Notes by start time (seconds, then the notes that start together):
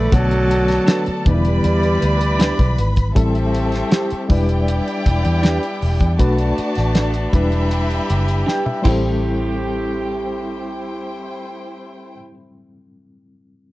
Already playing: A#1 D3 E3 G3 A3 B3 E4 D5
0.11 B1 D3 F#3 A3 B3 F#4 A4 A5, kick, closed hi-hat
0.31 closed hi-hat
0.51 closed hi-hat
0.68 snare, closed hi-hat
0.87 D4 A4 B4, snare, closed hi-hat
1.06 muted fingered electric bass stroke, closed hi-hat
1.25 E1 D3 E3 G3 B3 D#4 E4 G4 B4 D5 B5, kick, closed hi-hat
1.34 E4
1.45 G3, closed hi-hat
1.64 E2, closed hi-hat
1.83 closed hi-hat
2.02 D2, closed hi-hat
2.21 closed hi-hat
2.39 D4 G4 B4, snare, closed hi-hat
2.59 B1, kick, closed hi-hat
2.78 G#1, closed hi-hat
2.96 kick, closed hi-hat
3.15 A1 G3 A3 C4 E4 G4 A4 E5, kick, closed hi-hat
3.35 closed hi-hat
3.55 closed hi-hat
3.72 snare, closed hi-hat
3.91 E4 G4 C5, snare, closed hi-hat
4.10 muted fingered electric bass stroke, closed hi-hat
4.29 E1 E3 G3 B3 D4 E4 G4 B4 D5 G5, kick, open hi-hat
4.49 closed hi-hat
4.68 closed hi-hat
4.88 closed hi-hat
5.06 E1, kick, closed hi-hat
5.25 E2, closed hi-hat
5.43 D4 G4 B4, snare, closed hi-hat
5.63 closed hi-hat
5.82 E1, open hi-hat
6.00 E2, kick, closed hi-hat
6.19 B1 A3 D4 F#4 B4 D5 A5, kick, closed hi-hat
6.38 closed hi-hat
6.58 muted fingered electric bass stroke, closed hi-hat
6.75 A1, snare, closed hi-hat
6.95 D4 A4 B4, snare, closed hi-hat
7.14 closed hi-hat
7.33 E1 E3 G3 D4 E4 G4 B4 E5 B5, kick, closed hi-hat
7.52 closed hi-hat
7.71 closed hi-hat
7.91 closed hi-hat
8.10 F#1, closed hi-hat
8.28 closed hi-hat
8.46 D4 G4 B4 G5, snare
8.66 E5, high tom
8.82 A1 A2 G3 A3 C4 E4 G4 C5 G5, kick, crash
8.87 G4 A4 C5